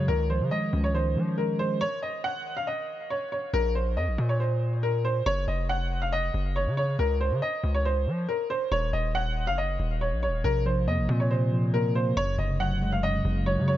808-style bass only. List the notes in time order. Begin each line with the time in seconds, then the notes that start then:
0.08 C#2
0.40 C#3
0.73 C#2
1.16 F3
3.54 A#1
3.97 F2
4.08 A#1
4.18 A#2
5.26 F#1
5.48 F1
6.34 F#1
6.67 C#3
6.99 C#2
7.31 C#3
7.64 C#2
8.07 F3
8.72 D#1
8.93 D#1
9.47 F#1
9.79 D#1
10.12 A#1
10.28 D#1
10.44 A#1
10.87 F2
10.98 A#1
11.09 A#2
12.17 F#1
12.38 F1
13.25 F#1
13.57 C#3